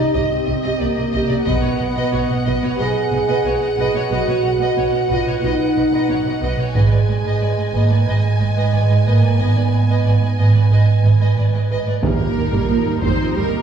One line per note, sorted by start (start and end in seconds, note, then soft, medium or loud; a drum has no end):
0.00 0.13 D#4 medium
0.00 1.42 D#5 soft
0.13 0.21 C2 medium
0.13 0.22 C3 medium
0.13 0.80 C4 medium
0.13 0.30 G4 medium
0.13 0.29 D#5 medium
0.47 0.54 C2 soft
0.47 0.54 C3 soft
0.47 0.55 G4 soft
0.47 0.54 D#5 soft
0.63 0.71 C3 medium
0.63 0.80 G4 medium
0.63 0.79 D#5 medium
0.79 0.87 C2 soft
0.79 0.87 C3 soft
0.79 1.46 A#3 medium
0.79 0.88 G4 soft
0.79 0.86 D5 soft
0.96 1.04 C3 soft
0.96 1.05 G4 soft
0.96 1.03 D#5 soft
1.11 1.20 C2 medium
1.11 1.20 C3 medium
1.11 1.30 G4 medium
1.11 1.28 D#5 medium
1.28 1.37 C3 soft
1.28 1.37 G4 soft
1.28 1.35 D5 soft
1.45 1.53 B1 medium
1.45 1.53 B2 medium
1.45 2.76 B3 medium
1.45 1.62 B4 medium
1.45 1.61 D#5 medium
1.45 6.71 F#5 medium
1.45 taiko soft
1.62 1.69 B2 soft
1.62 1.71 B4 soft
1.62 1.69 C#5 soft
1.79 1.86 B1 soft
1.79 1.86 B2 soft
1.79 1.87 B4 soft
1.79 1.86 D#5 soft
1.96 2.02 B2 medium
1.96 2.12 B4 medium
1.96 2.12 D#5 medium
2.13 2.19 B1 soft
2.13 2.19 B2 soft
2.13 2.20 B4 soft
2.13 2.20 C#5 soft
2.29 2.36 B2 soft
2.29 2.36 B4 soft
2.29 2.36 D#5 soft
2.45 2.52 B1 medium
2.45 2.53 B2 medium
2.45 2.61 B4 medium
2.45 2.61 D#5 medium
2.45 taiko soft
2.63 2.69 B2 soft
2.63 2.69 B4 soft
2.63 2.70 C#5 soft
2.78 2.85 B1 medium
2.78 2.86 B2 medium
2.78 4.11 G#4 medium
2.78 2.95 B4 medium
2.78 2.94 D#5 medium
3.11 3.18 B1 soft
3.11 3.19 B2 soft
3.11 3.19 B4 soft
3.11 3.19 D#5 soft
3.28 3.35 B2 medium
3.28 3.44 B4 medium
3.28 3.43 D#5 medium
3.45 3.51 B1 soft
3.45 3.51 B2 soft
3.45 3.51 B4 soft
3.45 3.52 C#5 soft
3.61 3.68 B2 soft
3.61 3.68 B4 soft
3.61 3.68 D#5 soft
3.77 3.84 B1 medium
3.77 3.84 B2 medium
3.77 3.93 B4 medium
3.77 3.94 D#5 medium
3.94 4.01 B2 soft
3.94 4.01 B4 soft
3.94 4.02 C#5 soft
4.10 4.17 B1 medium
4.10 4.17 B2 medium
4.10 5.10 F#4 medium
4.10 4.26 B4 medium
4.10 4.27 D#5 soft
4.27 4.34 B2 soft
4.27 4.34 B4 soft
4.27 4.35 C#5 soft
4.44 4.51 B1 soft
4.44 4.50 B2 soft
4.44 4.51 B4 soft
4.44 4.51 D#5 soft
4.60 4.67 B2 medium
4.60 4.75 B4 medium
4.60 4.76 D#5 medium
4.76 4.84 B1 soft
4.76 4.83 B2 soft
4.76 4.83 B4 soft
4.76 4.84 C#5 soft
4.92 4.99 B2 soft
4.92 5.01 B4 soft
4.92 5.01 D#5 soft
5.08 5.17 B1 medium
5.08 5.15 B2 medium
5.08 5.42 F4 medium
5.08 5.25 B4 medium
5.08 5.26 D#5 medium
5.26 5.33 B2 soft
5.26 5.34 B4 soft
5.26 5.34 C#5 soft
5.42 5.49 B1 medium
5.42 5.49 B2 medium
5.42 6.40 D#4 medium
5.42 5.58 B4 medium
5.42 5.59 D#5 medium
5.76 5.83 B1 soft
5.76 5.83 B2 soft
5.76 5.83 B4 soft
5.76 5.84 D#5 soft
5.92 5.99 B2 medium
5.92 6.08 B4 medium
5.92 6.08 D#5 soft
6.09 6.16 B1 soft
6.09 6.16 B2 soft
6.09 6.16 B4 soft
6.09 6.16 C#5 soft
6.25 6.32 B2 soft
6.25 6.32 B4 soft
6.25 6.34 D#5 soft
6.42 6.48 B1 medium
6.42 6.49 B2 medium
6.42 6.57 B4 soft
6.42 6.57 D#5 soft
6.59 6.65 B2 soft
6.59 6.65 B4 soft
6.59 6.66 C#5 soft
6.74 6.81 G#1 soft
6.74 6.82 G#2 soft
6.74 7.70 G#3 medium
6.74 6.89 B4 medium
6.74 6.90 D#5 soft
6.74 11.83 G#5 soft
6.74 taiko soft
6.90 6.98 G#2 soft
6.90 6.97 B4 soft
6.90 6.98 D5 soft
7.07 7.14 G#1 soft
7.07 7.15 G#2 soft
7.07 7.14 B4 soft
7.07 7.15 D#5 soft
7.23 7.32 G#2 soft
7.23 7.39 B4 soft
7.23 7.41 D#5 medium
7.40 7.47 G#1 soft
7.40 7.48 G#2 soft
7.40 7.47 B4 soft
7.40 7.48 D5 soft
7.57 7.65 G#2 soft
7.57 7.63 B4 soft
7.57 7.65 D#5 soft
7.73 7.80 G#1 soft
7.73 7.81 G#2 soft
7.73 8.07 A#3 medium
7.73 7.89 B4 soft
7.73 7.90 D#5 soft
7.90 7.97 G#2 soft
7.90 7.97 B4 soft
7.90 7.97 D5 soft
8.06 8.13 G#1 soft
8.06 8.14 G#2 soft
8.06 9.06 G#3 medium
8.06 8.22 B4 soft
8.06 8.23 D#5 soft
8.39 8.46 G#1 soft
8.39 8.47 G#2 soft
8.39 8.47 B4 soft
8.39 8.47 D#5 soft
8.56 8.63 G#2 soft
8.56 8.72 B4 soft
8.56 8.72 D#5 soft
8.73 8.79 G#1 soft
8.73 8.80 G#2 soft
8.73 8.80 B4 soft
8.73 8.79 D5 soft
8.90 8.96 G#2 soft
8.90 8.96 B4 soft
8.90 8.96 D#5 soft
9.06 9.12 G#1 soft
9.06 9.13 G#2 soft
9.06 9.38 A#3 soft
9.06 9.22 B4 soft
9.06 9.21 D#5 soft
9.23 9.29 G#2 soft
9.23 9.29 B4 soft
9.23 9.30 D5 soft
9.39 9.46 G#1 soft
9.39 9.45 G#2 soft
9.39 11.37 B3 medium
9.39 9.54 B4 soft
9.39 9.54 D#5 soft
9.55 9.62 G#2 soft
9.55 9.62 B4 soft
9.55 9.63 D5 soft
9.72 9.78 G#1 soft
9.72 9.79 G#2 soft
9.72 9.79 B4 soft
9.72 9.79 D#5 soft
9.88 9.95 G#2 soft
9.88 10.04 B4 soft
9.88 10.04 D#5 soft
10.05 10.11 G#1 soft
10.05 10.12 G#2 soft
10.05 10.12 B4 soft
10.05 10.11 D5 soft
10.21 10.28 G#2 soft
10.21 10.28 B4 soft
10.21 10.29 D#5 soft
10.38 10.45 G#1 soft
10.38 10.45 G#2 soft
10.38 10.54 B4 soft
10.38 10.53 D#5 soft
10.55 10.61 G#2 soft
10.55 10.62 B4 soft
10.55 10.62 D5 soft
10.71 10.77 G#1 soft
10.71 10.78 G#2 soft
10.71 10.87 B4 soft
10.71 10.87 D#5 soft
11.03 11.10 G#1 soft
11.03 11.11 G#2 soft
11.03 11.11 B4 soft
11.03 11.12 D#5 soft
11.20 11.27 G#2 soft
11.20 11.35 B4 soft
11.20 11.36 D#5 soft
11.36 11.43 G#1 soft
11.36 11.44 G#2 soft
11.36 11.43 B4 soft
11.36 11.44 D5 soft
11.53 11.60 G#2 soft
11.53 11.60 B4 soft
11.53 11.61 D#5 soft
11.69 11.76 G#1 soft
11.69 11.76 G#2 soft
11.69 11.85 B4 soft
11.69 11.86 D#5 soft
11.86 11.93 G#2 soft
11.86 11.94 B4 soft
11.86 11.94 D5 soft
12.01 12.09 D#2 soft
12.01 13.62 D#3 soft
12.01 12.19 G3 medium
12.01 12.98 A#3 soft
12.01 13.62 D#4 soft
12.01 13.62 G4 soft
12.01 12.98 A#4 medium
12.01 12.98 A#4 soft
12.01 taiko medium
12.19 12.26 D#2 soft
12.19 12.26 F3 soft
12.36 12.42 D#2 soft
12.36 12.43 D#2 soft
12.36 12.43 G3 soft
12.52 12.59 D#2 soft
12.52 12.67 G3 soft
12.52 taiko medium
12.69 12.76 D#2 soft
12.69 12.76 F3 soft
12.85 12.92 D#2 soft
12.85 12.92 G3 soft
13.02 13.09 D#2 medium
13.02 13.09 D#2 soft
13.02 13.18 G3 soft
13.02 13.34 C4 soft
13.02 13.35 C5 medium
13.02 13.36 C5 soft
13.02 taiko medium
13.19 13.26 D#2 soft
13.19 13.26 F3 soft
13.34 13.42 D#2 medium
13.34 13.42 D#2 soft
13.34 13.50 G3 medium
13.34 13.62 A#3 soft
13.34 13.62 A#4 medium
13.34 13.62 A#4 soft